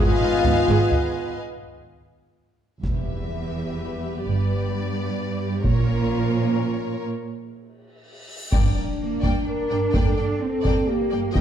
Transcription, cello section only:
0.21 0.29 G#2 soft
0.45 0.53 G#2 medium
0.69 0.77 G#2 medium
2.84 4.21 E2 soft
4.26 5.63 G2 soft
5.65 7.08 A#2 medium
9.01 9.44 A#3 soft
9.47 10.39 D4 soft
10.42 10.89 C4 soft
10.89 11.36 A#3 medium
11.36 11.41 C4 medium

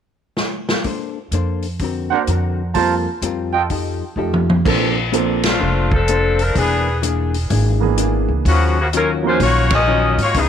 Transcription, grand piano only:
2.11 2.26 A#3 soft
2.11 2.26 D4 soft
2.11 2.26 F#4 soft
2.11 2.27 C5 soft
2.76 3.03 A#3 soft
2.76 3.03 F4 soft
2.76 3.04 A4 soft
2.76 3.04 C5 medium
4.18 4.46 A3 soft
4.18 4.46 F4 soft
4.18 4.46 G4 soft
4.18 4.47 D#5 soft
4.65 4.93 F3 medium
4.65 4.93 A#3 soft
4.65 4.94 C4 medium
4.65 4.94 D4 medium
4.65 4.94 A4 medium
5.13 5.41 F3 medium
5.13 5.41 A#3 medium
5.13 5.41 C4 medium
5.13 5.41 D4 medium
5.13 5.41 A4 medium
7.80 8.41 E3 medium
7.80 8.42 A#3 medium
7.80 8.42 B3 medium
7.80 8.42 D4 medium
7.80 8.43 G#4 medium
9.23 9.38 F3 medium
9.23 9.39 A#3 medium
9.23 9.39 C#4 soft
9.23 9.39 D#4 soft
9.23 9.39 F#4 medium

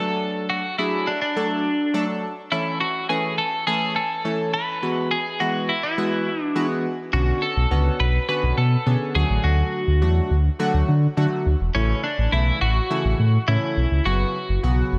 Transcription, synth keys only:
0.00 0.61 F#3 medium
0.00 0.61 A3 medium
0.00 0.61 D4 medium
0.00 0.61 A4 medium
0.78 1.09 F#3 medium
0.78 1.09 A3 medium
0.78 1.09 D4 medium
0.78 1.10 G#4 medium
1.36 1.67 F#3 medium
1.36 1.67 A3 medium
1.36 1.67 D4 medium
1.36 1.67 A4 medium
1.94 2.25 F#3 medium
1.94 2.25 A3 medium
1.94 2.25 D4 medium
1.94 2.25 A4 medium
2.51 2.82 E3 medium
2.51 2.83 A3 medium
2.51 2.83 C#4 medium
2.51 2.83 A4 medium
3.09 3.40 E3 medium
3.09 3.40 A3 medium
3.09 3.40 C#4 medium
3.09 3.40 B4 medium
3.67 3.98 E3 medium
3.67 3.98 A3 medium
3.67 3.98 C#4 medium
3.67 3.98 A4 medium
4.25 4.55 E3 medium
4.25 4.56 A3 medium
4.25 4.56 C#4 medium
4.25 4.56 A4 medium
4.82 5.13 E3 medium
4.82 5.13 G#3 medium
4.82 5.13 B3 medium
4.82 5.13 F#4 medium
5.40 5.71 E3 medium
5.40 5.71 G#3 medium
5.40 5.71 B3 medium
5.40 5.71 F#4 medium
5.98 6.29 E3 medium
5.98 6.29 G#3 medium
5.98 6.29 B3 medium
5.98 6.29 F#4 medium
6.55 6.86 E3 medium
6.55 6.86 G#3 medium
6.55 6.86 B3 medium
6.55 6.86 F#4 medium
7.13 7.44 D3 medium
7.13 7.44 B3 medium
7.13 7.44 C#4 medium
7.13 7.44 F#4 medium
7.71 8.02 D3 medium
7.71 8.02 B3 medium
7.71 8.02 C#4 medium
7.71 8.02 F#4 medium
8.28 8.59 D3 medium
8.28 8.59 B3 medium
8.28 8.60 C#4 medium
8.28 8.60 F#4 medium
8.86 9.14 D3 medium
8.86 9.15 B3 medium
8.86 9.15 C#4 medium
8.86 9.15 G#4 medium
9.15 9.84 D3 medium
9.15 9.84 F#3 medium
9.15 9.84 A3 medium
9.15 9.85 F#4 medium
10.01 10.32 D3 medium
10.01 10.32 F#3 medium
10.01 10.33 A3 medium
10.01 10.33 F#4 medium
10.59 10.90 D3 medium
10.59 10.90 F#3 medium
10.59 10.90 A3 medium
10.59 10.90 F#4 loud
11.17 11.48 D3 medium
11.17 11.48 F#3 medium
11.17 11.48 A3 medium
11.17 11.48 F#4 medium
11.75 12.06 C#3 medium
11.75 12.06 E3 medium
11.75 12.06 A3 medium
11.75 12.06 E4 medium
12.32 12.63 C#3 medium
12.32 12.63 E3 medium
12.32 12.63 A3 medium
12.32 12.63 E4 medium
12.90 13.21 C#3 medium
12.90 13.21 E3 medium
12.90 13.21 A3 medium
12.90 13.21 E4 medium
13.48 13.79 C#3 medium
13.48 13.79 E3 medium
13.48 13.79 A3 medium
13.48 13.79 C#4 medium
14.05 14.36 C#3 medium
14.05 14.36 F#3 medium
14.05 14.36 B3 medium
14.05 14.37 F#4 medium
14.63 14.94 C#3 medium
14.63 14.94 F#3 medium
14.63 14.94 B3 medium
14.63 14.94 F#4 medium

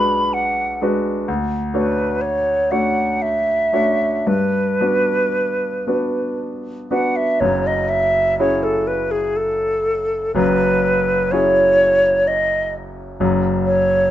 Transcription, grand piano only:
0.00 1.30 B1 medium
0.00 0.81 G#3 soft
0.00 0.82 D4 soft
0.00 0.82 F#4 soft
0.00 0.83 B4 soft
0.81 1.24 G#3 soft
0.81 1.24 D4 soft
0.81 1.25 F#4 soft
0.81 1.25 B4 soft
1.28 1.74 D2 medium
1.74 2.67 A3 soft
1.74 2.67 D4 soft
1.74 2.68 F#4 soft
1.74 2.68 C#5 soft
2.71 3.70 A3 soft
2.71 3.70 D4 soft
2.71 3.70 F#4 soft
2.71 3.70 C#5 soft
3.73 4.23 A3 soft
3.73 4.23 D4 soft
3.73 4.24 F#4 soft
3.73 4.24 C#5 soft
4.27 4.80 G2 soft
4.81 5.83 B3 soft
4.81 5.83 D4 soft
4.81 5.83 F#4 soft
4.81 5.83 B4 soft
5.87 6.87 B3 soft
5.87 6.88 D4 soft
5.87 6.88 F#4 soft
5.87 6.88 B4 soft
6.91 7.38 B3 soft
6.91 7.38 D4 soft
6.91 7.38 F#4 soft
6.91 7.39 B4 soft
7.41 8.36 F#1 medium
7.41 8.37 F#2 medium
8.39 10.31 C#4 soft
8.39 10.31 E4 soft
8.39 10.31 F#4 soft
8.39 10.31 G#4 soft
10.35 11.29 F#1 medium
10.35 11.29 F#2 medium
11.32 13.17 C#4 soft
11.32 13.17 E4 soft
11.32 13.17 F#4 soft
11.32 13.17 G#4 soft
13.20 14.10 F#1 medium
13.20 14.11 F#2 medium

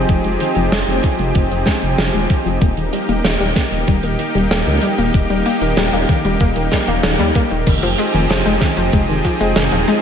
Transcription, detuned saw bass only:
0.09 0.21 F1 loud
0.25 0.37 F1 medium
0.56 0.68 F1 medium
0.72 0.84 F1 loud
0.88 1.00 F1 medium
1.19 1.32 F1 medium
1.35 1.47 F1 loud
1.51 1.63 F1 medium
1.83 1.95 F1 medium
1.99 2.11 F1 loud
2.14 2.26 D#1 medium
2.46 2.58 F1 medium
2.62 2.74 D#1 loud
2.77 2.90 D#1 medium
3.09 3.21 D#1 medium
3.24 3.37 D#1 loud
3.40 3.52 D#1 medium
3.72 3.84 D#1 medium
3.88 4.00 D#1 loud
4.03 4.16 D#1 medium
4.35 4.47 D#1 medium
4.51 4.63 D#1 loud
4.67 4.79 C#2 medium
4.98 5.10 D#1 medium
5.14 5.26 D#1 loud
5.30 5.42 D#1 medium
5.61 5.74 D#1 medium
5.77 5.89 D#1 loud
5.93 6.05 D#1 medium
6.25 6.37 D#1 medium
6.41 6.53 D#1 loud
6.56 6.68 D#1 medium
6.88 7.00 D#1 medium
7.04 7.16 D#1 loud
7.20 7.32 D#2 medium
7.51 7.63 D#1 medium
7.67 7.79 F1 loud
7.83 7.95 F1 medium
8.14 8.26 F1 medium
8.30 8.42 F1 loud
8.46 8.58 F1 medium
8.77 8.89 F1 medium
8.93 9.05 F1 loud
9.09 9.21 F1 medium
9.41 9.53 F1 medium
9.57 9.69 F1 loud
9.72 9.84 D#1 medium

